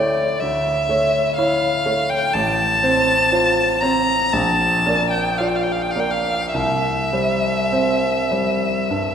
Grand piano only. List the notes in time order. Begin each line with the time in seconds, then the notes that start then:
Already playing: D2 A3 E4 C#5
0.42 D2
0.89 A3 C#5
1.38 E4 C#5
1.86 A3 C#5
2.34 A1
2.83 C4 C5
3.32 F4 C5
3.82 C4 C5
4.33 A#1
4.86 A#3 D5
5.40 F4 D5
5.96 A#3 D5
6.54 C2
7.13 G3 C5
7.72 C4 C5
8.31 G3 C5
8.90 G2